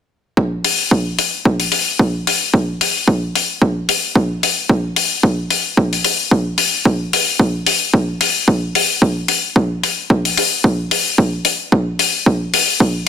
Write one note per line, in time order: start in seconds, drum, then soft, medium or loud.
0.37 kick loud
0.65 open hi-hat medium
0.91 kick loud
1.19 open hi-hat medium
1.45 kick loud
1.60 open hi-hat medium
1.72 open hi-hat loud
1.99 kick loud
2.27 open hi-hat loud
2.54 kick loud
2.81 open hi-hat loud
3.08 kick loud
3.35 open hi-hat medium
3.62 kick loud
3.89 open hi-hat loud
4.15 kick loud
4.43 open hi-hat loud
4.69 kick loud
4.96 open hi-hat loud
5.23 kick loud
5.50 open hi-hat medium
5.77 kick loud
5.93 open hi-hat medium
6.04 open hi-hat loud
6.31 kick loud
6.58 open hi-hat loud
6.85 kick loud
7.13 open hi-hat loud
7.39 kick loud
7.66 open hi-hat loud
7.94 kick loud
8.21 open hi-hat loud
8.48 kick loud
8.75 open hi-hat loud
9.02 kick loud
9.28 open hi-hat medium
9.56 kick loud
9.84 open hi-hat medium
10.10 kick loud
10.25 open hi-hat medium
10.37 open hi-hat loud
10.64 kick loud
10.91 open hi-hat loud
11.18 kick loud
11.45 open hi-hat loud
11.72 kick loud
11.99 open hi-hat medium
12.26 kick loud
12.54 open hi-hat loud
12.80 kick loud